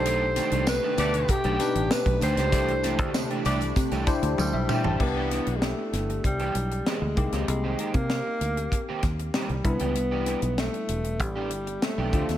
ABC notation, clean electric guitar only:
X:1
M:4/4
L:1/16
Q:1/4=97
K:C
V:1 name="Clean electric guitar"
[^D,A,=DG] z [^D,A,=DG] [^D,A,=DG] z [^D,A,=DG] [^D,A,=DG] z2 [^D,A,=DG] z4 [^D,A,=DG] [^D,A,=DG] | [E,A,DG] z [E,A,DG] [E,A,DG] z [E,A,DG] [E,A,DG] z2 [E,A,DG] z4 [E,A,DG] [E,A,DG] | z [E,B,DG] [E,B,DG] z6 [E,B,DG] z2 [E,B,DG] z2 [_E,_B,CG] | z [_E,_B,CG] [E,B,CG] z6 [E,B,CG] z2 [E,B,CG] z2 [=E,=B,DG] |
z [E,B,DG] [E,B,DG] z6 [E,B,DG] z3 [E,B,DG] [F,A,CG] z |]